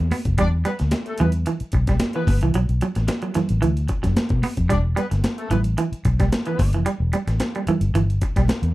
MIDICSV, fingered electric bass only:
0, 0, Header, 1, 3, 480
1, 0, Start_track
1, 0, Key_signature, 1, "minor"
1, 0, Tempo, 540200
1, 341, Time_signature, 4, 2, 24, 8
1, 7768, End_track
2, 0, Start_track
2, 0, Title_t, "Fingered electric bass"
2, 0, Program_c, 0, 33
2, 1, Note_on_c, 0, 40, 98
2, 96, Note_off_c, 0, 40, 0
2, 228, Note_on_c, 0, 29, 86
2, 328, Note_off_c, 0, 29, 0
2, 341, Note_on_c, 0, 40, 90
2, 553, Note_off_c, 0, 40, 0
2, 720, Note_on_c, 0, 38, 101
2, 815, Note_off_c, 0, 38, 0
2, 1069, Note_on_c, 0, 40, 79
2, 1278, Note_off_c, 0, 40, 0
2, 1540, Note_on_c, 0, 35, 82
2, 1753, Note_off_c, 0, 35, 0
2, 2017, Note_on_c, 0, 31, 86
2, 2132, Note_off_c, 0, 31, 0
2, 2149, Note_on_c, 0, 36, 89
2, 2248, Note_off_c, 0, 36, 0
2, 2261, Note_on_c, 0, 35, 86
2, 2373, Note_off_c, 0, 35, 0
2, 2392, Note_on_c, 0, 35, 100
2, 2490, Note_off_c, 0, 35, 0
2, 2633, Note_on_c, 0, 33, 88
2, 2730, Note_off_c, 0, 33, 0
2, 3113, Note_on_c, 0, 33, 88
2, 3211, Note_off_c, 0, 33, 0
2, 3229, Note_on_c, 0, 38, 87
2, 3437, Note_off_c, 0, 38, 0
2, 3589, Note_on_c, 0, 42, 88
2, 3688, Note_off_c, 0, 42, 0
2, 3826, Note_on_c, 0, 47, 76
2, 3927, Note_off_c, 0, 47, 0
2, 4066, Note_on_c, 0, 41, 74
2, 4167, Note_off_c, 0, 41, 0
2, 4179, Note_on_c, 0, 28, 90
2, 4392, Note_off_c, 0, 28, 0
2, 4546, Note_on_c, 0, 31, 88
2, 4647, Note_off_c, 0, 31, 0
2, 4891, Note_on_c, 0, 33, 86
2, 5107, Note_off_c, 0, 33, 0
2, 5378, Note_on_c, 0, 35, 97
2, 5591, Note_off_c, 0, 35, 0
2, 5857, Note_on_c, 0, 31, 87
2, 5987, Note_off_c, 0, 31, 0
2, 5987, Note_on_c, 0, 29, 81
2, 6087, Note_off_c, 0, 29, 0
2, 6221, Note_on_c, 0, 28, 89
2, 6323, Note_off_c, 0, 28, 0
2, 6462, Note_on_c, 0, 33, 82
2, 6564, Note_off_c, 0, 33, 0
2, 6938, Note_on_c, 0, 31, 79
2, 7042, Note_off_c, 0, 31, 0
2, 7055, Note_on_c, 0, 31, 83
2, 7269, Note_off_c, 0, 31, 0
2, 7433, Note_on_c, 0, 35, 91
2, 7530, Note_off_c, 0, 35, 0
2, 7663, Note_on_c, 0, 40, 89
2, 7765, Note_off_c, 0, 40, 0
2, 7768, End_track
3, 0, Start_track
3, 0, Title_t, "Muted fingered electric bass strokes"
3, 1428, Note_on_c, 9, 29, 50
3, 1517, Note_off_c, 9, 29, 0
3, 2985, Note_on_c, 9, 29, 49
3, 3074, Note_off_c, 9, 29, 0
3, 5261, Note_on_c, 9, 29, 50
3, 5350, Note_off_c, 9, 29, 0
3, 6813, Note_on_c, 9, 29, 47
3, 6902, Note_off_c, 9, 29, 0
3, 7768, End_track
0, 0, End_of_file